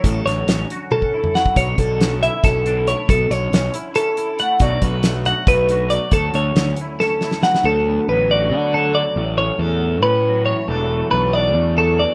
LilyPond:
<<
  \new Staff \with { instrumentName = "Clean electric guitar" } { \time 7/8 \key d \major \tempo 4 = 138 a'8 cis''4 r8 a'4 fis''8 | cis''8 a'4 e''8 a'4 cis''8 | a'8 cis''4 r8 a'4 fis''8 | d''8 b'4 fis''8 b'4 d''8 |
a'8 cis''4 r8 a'4 fis''8 | a'4 b'8 d''4 a'8 d''8~ | d''8 cis''8 a'4 b'4 cis''8 | a'4 b'8 d''4 a'8 d''8 | }
  \new Staff \with { instrumentName = "Clean electric guitar" } { \time 7/8 \key d \major << { fis4 cis'8 fis'8 cis'8 e'8 fis8~ | fis4 cis'8 e'8 cis'8 d'16 e'16 a8 | r4 cis'8 e'8 cis'8 e'8 a8 | <d fis a fis'>4 a8 fis'8 a8 fis'8 fis8~ |
fis4 cis'8 e'8 cis'8 e'8 fis8~ | fis8 b8 fis8 fis'8 b8 fis4~ | fis8 cis'4. cis'8 fis4 | <e fis a d'>8 a8 fis8 d'8 a8 fis4 | } \\ { <a, d>8 d2. | b,8 d2. | b,8 d2. | b,8 d2. |
d,8 d2. | d,2. d8 | a,2. e8 | e,2. e8 | } >> }
  \new Staff \with { instrumentName = "Picked electric bass" } { \clef bass \time 7/8 \key d \major a,,8 a,,8 a,,8 r2 | b,,8 b,,4. b,,4. | b,,8 b,,8 b,,8 r2 | b,,8 b,,4. b,,4. |
d,8 d,8 d,8 r2 | d,4 a,,4 d4. | a,,4 e,4 a,4. | e,,4 b,,4 e,4. | }
  \new DrumStaff \with { instrumentName = "Drums" } \drummode { \time 7/8 <hh bd>8 <hh sn>8 <hh sn>8 hh8 tommh16 bd8 toml16 sn16 bd16 | <hh bd>8 <hh bd>8 <hh sn>8 hh8 <hh bd sn>8 hh8 hh8 | <hh bd>8 hh8 <hh sn>8 hh8 hh8 hh8 hh8 | <hh bd>8 <hh bd>8 <hh sn>8 hh8 <hh bd>8 hh8 hh8 |
<hh bd>8 hh8 <hh sn>8 hh8 sn8 sn16 sn16 sn16 sn16 | r4 r4 r4. | r4 r4 r4. | r4 r4 r4. | }
>>